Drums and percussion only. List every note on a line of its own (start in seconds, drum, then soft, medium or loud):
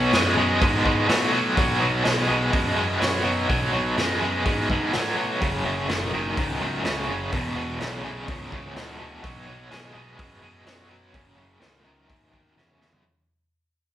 0.13 snare loud
0.13 open hi-hat soft
0.62 kick loud
0.62 open hi-hat soft
0.86 kick medium
1.09 snare loud
1.09 open hi-hat medium
1.57 kick loud
1.57 open hi-hat medium
2.05 snare loud
2.05 open hi-hat medium
2.53 kick loud
2.53 open hi-hat medium
3.02 snare loud
3.02 open hi-hat medium
3.50 kick loud
3.50 open hi-hat medium
3.98 snare loud
3.98 open hi-hat soft
4.46 kick loud
4.46 open hi-hat medium
4.70 kick medium
4.93 snare loud
4.93 open hi-hat medium
5.42 kick loud
5.42 open hi-hat medium
5.89 snare loud
5.89 open hi-hat medium
6.37 kick loud
6.37 open hi-hat medium
6.85 snare loud
6.85 open hi-hat medium
7.32 kick loud
7.32 open hi-hat medium
7.80 snare loud
7.80 open hi-hat medium
8.28 kick loud
8.28 open hi-hat medium
8.52 kick medium
8.76 snare loud
8.76 open hi-hat medium
9.24 kick loud
9.24 open hi-hat medium
9.71 snare medium
9.71 open hi-hat medium
10.19 kick loud
10.19 open hi-hat medium
10.67 snare loud
10.67 open hi-hat medium
11.14 kick loud
11.14 open hi-hat medium
11.62 snare loud
11.62 open hi-hat medium
12.09 kick loud
12.09 open hi-hat medium
12.34 kick medium
12.58 snare medium
12.70 mid tom medium
12.82 snare medium
12.93 floor tom medium